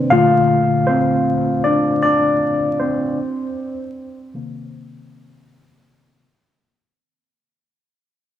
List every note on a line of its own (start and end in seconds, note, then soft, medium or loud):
0.00 0.11 C4 medium
0.00 0.12 B4 medium
0.00 0.12 C5 medium
0.10 1.22 A#2 medium
0.10 1.22 D3 soft
0.10 1.23 A3 medium
0.10 0.84 F4 medium
0.10 0.89 F5 loud
0.87 1.61 C4 medium
0.87 1.66 C5 medium
1.64 1.83 D4 medium
1.64 1.81 D5 medium
2.03 2.76 D4 medium
2.03 2.75 D5 medium
2.79 5.45 C4 medium
2.79 5.45 C5 medium
4.34 6.22 C3 soft
4.34 6.22 D#3 soft
4.34 6.23 A#3 medium